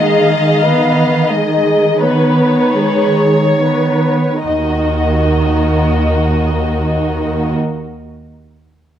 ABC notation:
X:1
M:6/8
L:1/16
Q:3/8=26
K:Ebm
V:1 name="Violin section"
f4 e2 d6 | e12 |]
V:2 name="Violin section"
e6 c3 z3 | [GB]12 |]
V:3 name="Viola section"
[A,A]2 [Cc]2 [A,A]2 [Cc]2 [A,A]2 [Cc]2 | [E,E]12 |]
V:4 name="Cello section" clef=bass
E,12 | E,,12 |]
V:5 name="Double bass section" clef=bass
z12 | E,,12 |]